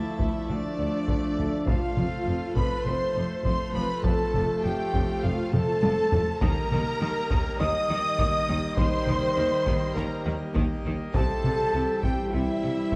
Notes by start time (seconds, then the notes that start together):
Already playing: F3 A3 E4 A4 D5 E5 A5
0.19 D2, taiko
0.48 D2 D4 D5
0.78 D2
1.08 D2, taiko
1.38 D2
1.66 F1 F2 F3 A3 F4 A4 C5 F5, taiko
1.97 F1 F2, taiko mid
2.26 F1 F2
2.56 F1 F2 B4 B5, taiko
2.85 F1 F2 C5 C6
3.15 F1 F2
3.44 F1 F2 C5 C6, taiko
3.74 F1 F2 B4 B5
4.03 F1 F2 A4 A5, taiko
4.34 F1 F2, taiko mid
4.63 F1 F2 G4 G5
4.93 F1 F2, taiko
5.23 F1 F2 F4 F5
5.52 F1 F2 A4 A5, taiko mid
5.83 F1 F2, taiko high
6.12 F1 F2, taiko low
6.40 D#2 D#3 G3 A#3 G4 A#4 D#5 A#5, taiko
6.71 D#2 D#3, taiko mid
7.01 D#2 D#3
7.30 D#2 D#3, taiko
7.59 D#2 D#3 D#5 D#6
7.89 D#2 D#3
8.19 D#2 D#3, taiko
8.49 D#2 D#3
8.77 D#2 D#3 C5 C6, taiko
9.07 D#2 D#3, taiko mid
9.37 D#2 D#3
9.66 D#2 D#3, taiko
9.94 D#2 D#3 A#4 A#5
10.25 D#2 D#3, taiko rim
10.55 D#2 D#3, taiko
10.85 D#2 D#3
11.13 C2 C3 E3 G3 G4 A4 C5 E5 A5, taiko
11.44 C2 C3, taiko mid
11.74 C2 C3
12.01 C2 C3 G4 G5, taiko
12.32 C2 C3 E4 E5
12.63 C2 C3
12.92 C3, taiko